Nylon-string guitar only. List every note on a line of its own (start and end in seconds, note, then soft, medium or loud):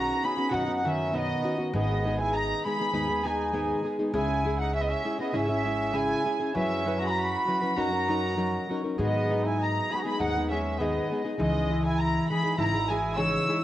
0.00 0.23 D#3 soft
0.00 0.24 B3 medium
0.00 0.24 C#4 medium
0.00 0.24 F#4 medium
0.24 0.38 D#3 soft
0.24 0.38 B3 soft
0.24 0.37 C#4 soft
0.24 0.36 F#4 soft
0.37 0.50 B3 soft
0.37 0.50 C#4 soft
0.37 0.50 F#4 soft
0.50 0.68 B2 medium
0.50 0.68 D#3 medium
0.50 0.67 B3 medium
0.50 0.65 C#4 medium
0.50 0.65 F#4 medium
0.66 0.83 B3 soft
0.66 0.83 C#4 soft
0.66 0.84 F#4 soft
0.83 1.12 D#3 medium
0.83 1.12 B3 medium
0.83 1.12 C#4 medium
0.83 1.12 F#4 medium
1.12 1.44 B2 medium
1.12 1.42 D#3 medium
1.12 1.42 B3 medium
1.12 1.43 C#4 medium
1.12 1.43 F#4 medium
1.43 1.58 D#3 soft
1.43 1.58 B3 medium
1.43 1.58 C#4 medium
1.43 1.57 F#4 medium
1.58 1.73 B3 soft
1.58 1.74 C#4 soft
1.58 1.73 F#4 medium
1.74 2.05 G#2 medium
1.74 2.05 D#3 medium
1.74 2.04 G#3 medium
1.74 2.05 B3 medium
1.74 2.05 D#4 medium
1.74 2.06 G#4 medium
2.05 2.66 G#3 medium
2.05 2.65 B3 medium
2.05 2.65 D#4 medium
2.05 2.67 G#4 medium
2.66 2.80 G#3 soft
2.66 2.79 B3 soft
2.66 2.79 D#4 medium
2.66 2.78 G#4 soft
2.80 2.92 G#3 soft
2.80 2.92 B3 soft
2.80 2.93 D#4 soft
2.80 2.93 G#4 soft
2.93 3.09 G#2 medium
2.93 3.09 D#3 medium
2.93 3.09 G#3 medium
2.93 3.09 B3 medium
2.93 3.09 D#4 medium
2.93 3.08 G#4 medium
3.09 3.23 G#3 soft
3.09 3.23 B3 soft
3.09 3.24 D#4 soft
3.09 3.25 G#4 soft
3.24 3.52 G#3 medium
3.24 3.53 B3 medium
3.24 3.52 D#4 medium
3.24 3.53 G#4 medium
3.53 3.84 G#2 medium
3.53 3.85 D#3 medium
3.53 3.81 G#3 medium
3.53 3.82 B3 medium
3.53 3.83 D#4 medium
3.53 3.83 G#4 medium
3.82 3.98 G#3 medium
3.82 3.98 B3 medium
3.82 3.98 D#4 medium
3.82 3.97 G#4 medium
3.99 4.13 G#3 soft
3.99 4.14 B3 soft
3.99 4.14 D#4 medium
3.99 4.13 G#4 medium
4.14 4.45 C#3 medium
4.14 4.44 G#3 medium
4.14 4.45 C#4 medium
4.14 4.45 E4 medium
4.14 4.45 G#4 medium
4.45 5.03 G#3 soft
4.45 5.04 C#4 medium
4.45 5.05 E4 medium
4.45 5.05 G#4 medium
5.04 5.19 G#3 soft
5.04 5.19 C#4 soft
5.04 5.19 E4 soft
5.04 5.18 G#4 medium
5.19 5.33 C#4 soft
5.19 5.33 E4 soft
5.19 5.33 G#4 soft
5.32 5.49 C#3 medium
5.32 5.49 G#3 medium
5.32 5.50 C#4 medium
5.32 5.49 E4 medium
5.32 5.48 G#4 medium
5.49 5.66 C#4 soft
5.49 5.66 E4 soft
5.49 5.65 G#4 medium
5.66 5.92 G#3 medium
5.66 5.93 C#4 medium
5.66 5.92 E4 medium
5.66 5.94 G#4 medium
5.93 6.25 C#3 medium
5.93 6.24 G#3 medium
5.93 6.24 C#4 medium
5.93 6.25 E4 medium
5.93 6.25 G#4 medium
6.25 6.40 G#3 medium
6.25 6.40 C#4 medium
6.25 6.40 E4 medium
6.25 6.39 G#4 medium
6.40 6.54 C#4 soft
6.40 6.55 E4 soft
6.40 6.55 G#4 medium
6.55 6.85 F#3 medium
6.55 6.86 C#4 medium
6.55 6.86 E4 medium
6.55 6.87 B4 medium
6.86 7.46 F#3 medium
6.86 7.46 C#4 medium
6.86 7.48 E4 medium
6.86 7.48 B4 medium
7.47 7.62 F#3 soft
7.47 7.62 C#4 soft
7.47 7.61 E4 soft
7.47 7.60 B4 medium
7.62 7.76 C#4 soft
7.62 7.77 E4 soft
7.62 7.76 B4 medium
7.77 7.93 F#3 medium
7.77 7.93 C#4 medium
7.77 7.92 D#4 medium
7.77 7.91 A#4 medium
7.92 8.08 C#4 soft
7.92 8.09 D#4 soft
7.92 8.08 A#4 soft
8.08 8.36 F#3 medium
8.08 8.36 C#4 medium
8.08 8.37 D#4 medium
8.08 8.37 A#4 medium
8.37 8.68 F#3 medium
8.37 8.69 C#4 soft
8.37 8.70 D#4 medium
8.37 8.69 A#4 medium
8.69 8.84 F#3 medium
8.69 8.84 C#4 medium
8.69 8.83 D#4 medium
8.69 8.83 A#4 medium
8.84 8.99 C#4 soft
8.84 8.99 D#4 soft
8.84 8.99 A#4 medium
8.99 9.30 G#2 medium
8.99 9.30 D#3 medium
8.99 9.30 G#3 medium
8.99 9.30 B3 medium
8.99 9.30 D#4 medium
8.99 9.31 G#4 medium
9.31 9.92 G#3 medium
9.31 9.91 B3 medium
9.31 9.93 D#4 medium
9.31 9.94 G#4 medium
9.93 10.06 G#3 soft
9.93 10.04 B3 soft
9.93 10.04 D#4 medium
9.93 10.04 G#4 medium
10.05 10.20 G#3 soft
10.05 10.19 B3 soft
10.05 10.19 D#4 soft
10.05 10.19 G#4 soft
10.20 10.36 G#2 medium
10.20 10.36 D#3 medium
10.20 10.36 G#3 medium
10.20 10.36 B3 medium
10.20 10.36 D#4 medium
10.20 10.36 G#4 medium
10.37 10.50 G#3 soft
10.37 10.52 B3 soft
10.37 10.52 D#4 soft
10.37 10.52 G#4 soft
10.52 10.79 G#3 medium
10.52 10.79 B3 medium
10.52 10.80 G#4 medium
10.80 11.11 G#2 medium
10.80 11.11 D#3 medium
10.80 11.10 G#3 medium
10.80 11.10 B3 medium
10.80 11.12 D#4 medium
10.80 11.11 G#4 medium
11.11 11.25 G#3 soft
11.11 11.25 B3 medium
11.11 11.24 D#4 medium
11.11 11.23 G#4 medium
11.24 11.38 G#3 soft
11.24 11.39 B3 soft
11.24 11.38 D#4 soft
11.24 11.38 G#4 soft
11.38 11.70 C#3 medium
11.38 11.69 E3 medium
11.38 11.71 G#3 medium
11.38 11.71 D#4 medium
11.38 11.71 G#4 medium
11.71 12.28 E3 medium
11.71 12.29 G#3 medium
11.71 12.30 G#4 medium
12.29 12.44 E3 soft
12.29 12.44 G#3 medium
12.29 12.44 D#4 soft
12.29 12.42 G#4 soft
12.43 12.57 G#3 soft
12.43 12.57 D#4 soft
12.43 12.58 G#4 soft
12.58 12.74 C#3 medium
12.58 12.74 E3 medium
12.58 12.74 G#3 medium
12.58 12.73 D#4 medium
12.58 12.73 G#4 medium
12.74 12.89 G#3 soft
12.74 12.90 D#4 soft
12.74 12.90 G#4 soft
12.90 13.15 E3 medium
12.90 13.16 G#3 medium
12.90 13.17 G#4 medium
13.17 13.49 C#3 medium
13.17 13.47 E3 medium
13.17 13.48 G#3 medium
13.17 13.48 D#4 medium
13.17 13.49 G#4 medium
13.48 13.63 E3 medium
13.48 13.62 G#3 medium
13.48 13.61 D#4 medium
13.48 13.61 G#4 medium